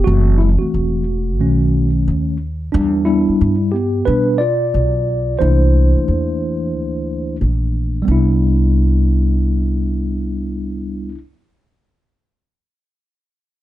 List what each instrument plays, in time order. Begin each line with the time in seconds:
0.04 upright bass F#1, tine electric piano E3 A3 C4 F#4
0.38 tine electric piano G#3 E4
0.59 tine electric piano A3 F#4, muted upright bass stroke
0.74 upright bass E1
1.40 upright bass B1, tine electric piano D#3 A3 C#4
2.08 upright bass D#2
2.72 upright bass E2, tine electric piano G3 D4
3.05 tine electric piano G3 B3 D4 E4
3.29 muted upright bass stroke
3.41 upright bass G2
3.72 tine electric piano B3 G4
4.05 upright bass B2, tine electric piano G3 B3 D4 B4
4.38 tine electric piano F4 D5
4.74 upright bass B1
5.39 upright bass C2, tine electric piano E3 A3 A#3 D4 E4 C5
5.95 muted upright bass stroke
6.08 upright bass E2
6.75 upright bass D2
7.41 upright bass A#1
8.02 tine electric piano G3 B3
8.08 upright bass C2, tine electric piano D4 E4